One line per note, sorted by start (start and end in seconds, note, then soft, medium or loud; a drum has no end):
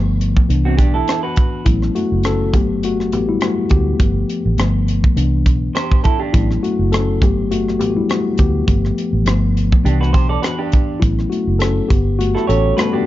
0.00 0.36 G1 medium
0.00 0.30 F3 soft
0.00 0.31 A3 soft
0.00 0.31 B3 medium
0.21 closed hi-hat medium
0.37 kick medium
0.49 0.79 C2 medium
0.49 1.62 E3 soft
0.49 1.62 B3 soft
0.49 1.63 D4 medium
0.49 closed hi-hat medium
0.65 0.78 C4 medium
0.65 0.77 F#4 medium
0.77 1.01 B1 medium
0.77 0.94 D4 medium
0.77 0.93 G4 medium
0.77 kick medium
0.77 closed hi-hat medium
0.94 1.22 E4 medium
0.94 1.22 A4 medium
1.08 cross-stick medium
1.08 closed hi-hat medium
1.23 1.64 F#4 soft
1.23 1.64 B4 medium
1.36 kick medium
1.36 closed hi-hat medium
1.65 1.88 A1 medium
1.65 2.50 F#3 soft
1.65 1.94 A3 medium
1.65 2.50 B3 soft
1.65 2.25 C#4 soft
1.65 1.96 E4 medium
1.65 kick medium
1.65 closed hi-hat medium
1.82 cross-stick soft
1.95 2.23 A3 medium
1.95 2.26 F#4 medium
1.95 closed hi-hat medium
2.12 2.54 F#1 medium
2.23 2.53 C#4 medium
2.23 2.55 A4 medium
2.23 cross-stick medium
2.23 closed hi-hat medium
2.54 3.13 G1 medium
2.54 3.38 F#3 soft
2.54 2.83 A3 soft
2.54 3.12 B3 medium
2.54 2.85 G4 medium
2.54 kick medium
2.54 closed hi-hat medium
2.83 3.11 A3 medium
2.83 3.14 F#4 medium
2.83 closed hi-hat medium
3.00 cross-stick soft
3.12 3.35 A1 medium
3.12 3.28 B3 medium
3.12 3.28 G4 medium
3.12 closed hi-hat medium
3.29 3.41 G3 medium
3.29 3.41 E4 medium
3.41 3.55 A3 medium
3.41 3.55 F#4 medium
3.41 cross-stick medium
3.41 closed hi-hat medium
3.69 3.93 D2 medium
3.69 3.99 B3 medium
3.69 4.54 G4 medium
3.69 kick medium
3.69 closed hi-hat medium
3.99 4.22 G1 medium
3.99 4.55 F3 soft
3.99 4.55 A3 soft
3.99 4.56 B3 medium
3.99 kick loud
3.99 closed hi-hat medium
4.29 closed hi-hat medium
4.45 4.56 A1 medium
4.58 5.03 G1 medium
4.58 5.14 F3 soft
4.58 5.14 A3 soft
4.58 5.14 B3 soft
4.58 cross-stick medium
4.58 closed hi-hat medium
4.88 closed hi-hat medium
5.04 kick medium
5.16 5.46 C2 medium
5.16 6.00 E3 soft
5.16 6.00 B3 soft
5.16 6.01 D4 medium
5.16 closed hi-hat medium
5.46 5.68 B1 medium
5.46 kick medium
5.46 closed hi-hat medium
5.75 6.03 G4 medium
5.75 6.03 C5 medium
5.75 cross-stick medium
5.75 closed hi-hat medium
5.92 kick medium
6.04 6.19 E4 medium
6.04 6.19 A4 medium
6.04 kick medium
6.04 closed hi-hat medium
6.19 6.48 D4 soft
6.19 6.48 G4 medium
6.33 6.56 A1 medium
6.33 7.17 F#3 soft
6.33 6.62 A3 medium
6.33 7.18 B3 soft
6.33 6.92 C#4 soft
6.33 6.64 E4 medium
6.33 kick medium
6.33 closed hi-hat medium
6.51 cross-stick soft
6.63 6.90 A3 medium
6.63 6.93 F#4 medium
6.63 closed hi-hat medium
6.79 7.22 F#1 medium
6.92 7.20 C#4 medium
6.92 7.22 A4 medium
6.92 cross-stick medium
6.92 closed hi-hat medium
7.21 7.80 G1 medium
7.21 7.61 F#3 soft
7.21 7.50 A3 soft
7.21 7.62 B3 medium
7.21 7.52 G4 medium
7.21 kick medium
7.21 closed hi-hat medium
7.51 7.78 A3 medium
7.51 7.81 F#4 medium
7.51 closed hi-hat medium
7.68 cross-stick soft
7.79 8.02 A1 medium
7.79 7.85 B3 medium
7.79 7.85 G4 medium
7.79 closed hi-hat medium
7.90 7.95 F#4 medium
7.97 8.09 G3 medium
7.97 8.10 E4 medium
8.09 8.37 A3 medium
8.09 8.40 F#4 medium
8.09 cross-stick medium
8.09 closed hi-hat medium
8.38 8.61 D2 medium
8.38 8.66 B3 medium
8.38 9.23 G4 medium
8.38 kick medium
8.38 closed hi-hat medium
8.66 8.90 G1 medium
8.66 9.23 F3 soft
8.66 9.23 A3 soft
8.66 9.23 B3 soft
8.66 kick medium
8.66 closed hi-hat medium
8.85 cross-stick soft
8.98 closed hi-hat medium
9.13 9.23 A1 medium
9.25 9.71 G1 medium
9.25 9.66 F3 soft
9.25 9.66 A3 soft
9.25 9.66 B3 medium
9.25 cross-stick medium
9.25 closed hi-hat medium
9.57 closed hi-hat medium
9.72 kick medium
9.83 10.14 C2 medium
9.83 10.68 E3 medium
9.83 10.68 B3 soft
9.83 10.69 D4 medium
9.83 10.00 D4 soft
9.83 10.00 G4 medium
9.83 closed hi-hat medium
10.01 10.13 F#4 medium
10.01 10.12 B4 medium
10.01 cross-stick soft
10.13 10.37 B1 loud
10.13 10.29 G4 medium
10.13 10.29 C5 medium
10.13 kick medium
10.13 closed hi-hat medium
10.29 10.42 A4 medium
10.29 10.42 D5 medium
10.42 10.58 F#4 medium
10.42 10.58 B4 medium
10.42 cross-stick medium
10.42 closed hi-hat medium
10.58 11.00 D4 medium
10.58 11.00 G4 medium
10.72 kick medium
10.72 closed hi-hat medium
11.00 11.25 A1 medium
11.00 11.85 F#3 soft
11.00 11.30 A3 medium
11.00 11.86 B3 soft
11.00 11.60 C#4 soft
11.00 11.31 E4 medium
11.00 kick loud
11.00 closed hi-hat medium
11.19 cross-stick soft
11.30 11.59 A3 medium
11.30 11.61 F#4 medium
11.30 closed hi-hat medium
11.47 11.80 F#1 medium
11.59 11.88 C#4 medium
11.59 11.90 A4 medium
11.59 cross-stick medium
11.59 closed hi-hat medium
11.89 12.35 G1 medium
11.89 12.18 B3 medium
11.89 12.20 G4 medium
11.89 kick medium
11.89 closed hi-hat medium
12.19 12.47 A3 medium
12.19 12.49 F#4 medium
12.19 closed hi-hat medium
12.35 12.47 E4 soft
12.35 12.48 A4 medium
12.35 cross-stick soft
12.47 12.71 A1 medium
12.47 12.77 C#4 medium
12.47 12.76 G4 soft
12.47 12.79 A4 medium
12.47 12.76 C#5 medium
12.47 closed hi-hat medium
12.77 13.06 G3 soft
12.77 12.93 A3 medium
12.77 12.93 B3 medium
12.77 12.93 F#4 medium
12.77 12.94 F#4 medium
12.77 12.92 B4 medium
12.77 cross-stick medium
12.77 closed hi-hat medium
12.93 13.06 B3 medium
12.93 13.06 D4 medium
12.93 13.06 G4 medium